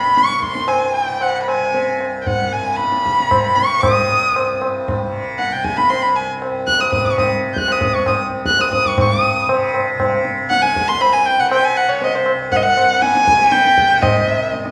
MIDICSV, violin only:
0, 0, Header, 1, 2, 480
1, 0, Start_track
1, 0, Tempo, 522193
1, 1123, Time_signature, 5, 2, 24, 8
1, 3998, Tempo, 515021
1, 7358, Tempo, 505476
1, 13774, End_track
2, 0, Start_track
2, 0, Title_t, "Violin"
2, 0, Program_c, 0, 40
2, 0, Note_on_c, 0, 83, 90
2, 160, Note_on_c, 0, 85, 97
2, 174, Note_off_c, 0, 83, 0
2, 348, Note_off_c, 0, 85, 0
2, 348, Note_on_c, 0, 85, 64
2, 393, Note_on_c, 0, 84, 90
2, 407, Note_off_c, 0, 85, 0
2, 622, Note_on_c, 0, 80, 79
2, 636, Note_off_c, 0, 84, 0
2, 870, Note_on_c, 0, 79, 80
2, 884, Note_off_c, 0, 80, 0
2, 1119, Note_on_c, 0, 78, 79
2, 1133, Note_off_c, 0, 79, 0
2, 1299, Note_off_c, 0, 78, 0
2, 1305, Note_on_c, 0, 83, 51
2, 1363, Note_on_c, 0, 80, 75
2, 1377, Note_off_c, 0, 83, 0
2, 1844, Note_off_c, 0, 80, 0
2, 2037, Note_on_c, 0, 79, 50
2, 2080, Note_on_c, 0, 78, 73
2, 2094, Note_off_c, 0, 79, 0
2, 2321, Note_on_c, 0, 80, 74
2, 2335, Note_off_c, 0, 78, 0
2, 2537, Note_on_c, 0, 83, 89
2, 2551, Note_off_c, 0, 80, 0
2, 3259, Note_on_c, 0, 85, 92
2, 3273, Note_off_c, 0, 83, 0
2, 3501, Note_on_c, 0, 87, 89
2, 3515, Note_off_c, 0, 85, 0
2, 4229, Note_off_c, 0, 87, 0
2, 4961, Note_on_c, 0, 78, 75
2, 5091, Note_on_c, 0, 79, 75
2, 5105, Note_off_c, 0, 78, 0
2, 5200, Note_on_c, 0, 80, 82
2, 5214, Note_off_c, 0, 79, 0
2, 5322, Note_on_c, 0, 83, 94
2, 5336, Note_off_c, 0, 80, 0
2, 5435, Note_on_c, 0, 84, 86
2, 5449, Note_off_c, 0, 83, 0
2, 5556, Note_on_c, 0, 83, 82
2, 5570, Note_off_c, 0, 84, 0
2, 5683, Note_on_c, 0, 80, 73
2, 5697, Note_off_c, 0, 83, 0
2, 5803, Note_off_c, 0, 80, 0
2, 6164, Note_on_c, 0, 90, 95
2, 6287, Note_on_c, 0, 87, 80
2, 6301, Note_off_c, 0, 90, 0
2, 6395, Note_off_c, 0, 87, 0
2, 6401, Note_on_c, 0, 87, 82
2, 6528, Note_on_c, 0, 85, 73
2, 6542, Note_off_c, 0, 87, 0
2, 6635, Note_off_c, 0, 85, 0
2, 6641, Note_on_c, 0, 87, 68
2, 6752, Note_off_c, 0, 87, 0
2, 6964, Note_on_c, 0, 91, 59
2, 7007, Note_on_c, 0, 90, 92
2, 7021, Note_off_c, 0, 91, 0
2, 7136, Note_on_c, 0, 87, 80
2, 7150, Note_off_c, 0, 90, 0
2, 7239, Note_off_c, 0, 87, 0
2, 7244, Note_on_c, 0, 87, 78
2, 7354, Note_on_c, 0, 85, 75
2, 7368, Note_off_c, 0, 87, 0
2, 7465, Note_off_c, 0, 85, 0
2, 7470, Note_on_c, 0, 87, 69
2, 7587, Note_off_c, 0, 87, 0
2, 7845, Note_on_c, 0, 90, 82
2, 7982, Note_on_c, 0, 87, 81
2, 7996, Note_off_c, 0, 90, 0
2, 8094, Note_off_c, 0, 87, 0
2, 8101, Note_on_c, 0, 87, 86
2, 8233, Note_on_c, 0, 85, 74
2, 8247, Note_off_c, 0, 87, 0
2, 8341, Note_off_c, 0, 85, 0
2, 8352, Note_on_c, 0, 85, 85
2, 8552, Note_off_c, 0, 85, 0
2, 8552, Note_on_c, 0, 87, 85
2, 9027, Note_off_c, 0, 87, 0
2, 9772, Note_on_c, 0, 78, 99
2, 9888, Note_on_c, 0, 80, 102
2, 9902, Note_off_c, 0, 78, 0
2, 10137, Note_on_c, 0, 84, 103
2, 10151, Note_off_c, 0, 80, 0
2, 10257, Note_on_c, 0, 83, 100
2, 10271, Note_off_c, 0, 84, 0
2, 10372, Note_on_c, 0, 80, 91
2, 10386, Note_off_c, 0, 83, 0
2, 10493, Note_on_c, 0, 79, 97
2, 10507, Note_off_c, 0, 80, 0
2, 10626, Note_on_c, 0, 78, 87
2, 10640, Note_off_c, 0, 79, 0
2, 10731, Note_off_c, 0, 78, 0
2, 10736, Note_on_c, 0, 79, 97
2, 10861, Note_on_c, 0, 80, 89
2, 10875, Note_off_c, 0, 79, 0
2, 10980, Note_on_c, 0, 78, 88
2, 10994, Note_off_c, 0, 80, 0
2, 11097, Note_on_c, 0, 73, 83
2, 11111, Note_off_c, 0, 78, 0
2, 11234, Note_on_c, 0, 75, 86
2, 11248, Note_off_c, 0, 73, 0
2, 11343, Note_on_c, 0, 72, 74
2, 11357, Note_off_c, 0, 75, 0
2, 11459, Note_off_c, 0, 72, 0
2, 11692, Note_on_c, 0, 78, 90
2, 11731, Note_on_c, 0, 75, 85
2, 11746, Note_off_c, 0, 78, 0
2, 11796, Note_on_c, 0, 78, 93
2, 11810, Note_off_c, 0, 75, 0
2, 12163, Note_on_c, 0, 80, 109
2, 12177, Note_off_c, 0, 78, 0
2, 12638, Note_on_c, 0, 79, 103
2, 12652, Note_off_c, 0, 80, 0
2, 13118, Note_on_c, 0, 75, 87
2, 13132, Note_off_c, 0, 79, 0
2, 13774, Note_off_c, 0, 75, 0
2, 13774, End_track
0, 0, End_of_file